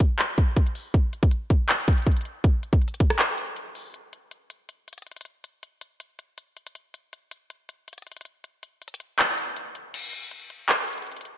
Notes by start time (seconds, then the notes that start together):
0.00 kick, closed hi-hat
0.19 clap, closed hi-hat
0.38 kick, closed hi-hat
0.57 kick, closed hi-hat
0.67 closed hi-hat
0.75 open hi-hat
0.94 kick, closed hi-hat
1.13 closed hi-hat
1.23 kick
1.31 closed hi-hat
1.50 kick, closed hi-hat
1.69 clap, closed hi-hat
1.88 kick, closed hi-hat
1.93 closed hi-hat
1.98 closed hi-hat
2.02 closed hi-hat
2.07 kick, closed hi-hat
2.12 closed hi-hat
2.17 closed hi-hat
2.21 closed hi-hat
2.25 closed hi-hat
2.44 kick, closed hi-hat
2.63 closed hi-hat
2.73 kick
2.82 closed hi-hat
2.88 closed hi-hat
2.94 closed hi-hat
3.00 kick, closed hi-hat
3.10 cross-stick
3.19 clap, closed hi-hat
3.38 closed hi-hat
3.56 closed hi-hat
3.75 open hi-hat
3.94 closed hi-hat
4.13 closed hi-hat
4.31 closed hi-hat
4.50 closed hi-hat
4.69 closed hi-hat
4.88 closed hi-hat
4.93 closed hi-hat
4.98 closed hi-hat
5.02 closed hi-hat
5.07 closed hi-hat
5.12 closed hi-hat
5.17 closed hi-hat
5.21 closed hi-hat
5.25 closed hi-hat
5.44 closed hi-hat
5.63 closed hi-hat
5.81 closed hi-hat
6.00 closed hi-hat
6.19 closed hi-hat
6.38 closed hi-hat
6.57 closed hi-hat
6.67 closed hi-hat
6.75 closed hi-hat
6.94 closed hi-hat
7.13 closed hi-hat
7.31 closed hi-hat
7.50 closed hi-hat
7.69 closed hi-hat
7.88 closed hi-hat
7.93 closed hi-hat
7.98 closed hi-hat
8.02 closed hi-hat
8.07 closed hi-hat
8.12 closed hi-hat
8.17 closed hi-hat
8.21 closed hi-hat
8.25 closed hi-hat
8.44 closed hi-hat
8.63 closed hi-hat
8.82 closed hi-hat
8.88 closed hi-hat
8.94 closed hi-hat
9.00 closed hi-hat
9.19 clap, closed hi-hat
9.38 closed hi-hat
9.57 closed hi-hat
9.75 closed hi-hat
9.94 closed hi-hat, crash
10.13 closed hi-hat
10.31 closed hi-hat
10.50 closed hi-hat
10.69 clap, closed hi-hat
10.88 closed hi-hat
10.93 closed hi-hat
10.98 closed hi-hat
11.02 closed hi-hat
11.07 closed hi-hat
11.12 closed hi-hat
11.17 closed hi-hat
11.21 closed hi-hat
11.25 closed hi-hat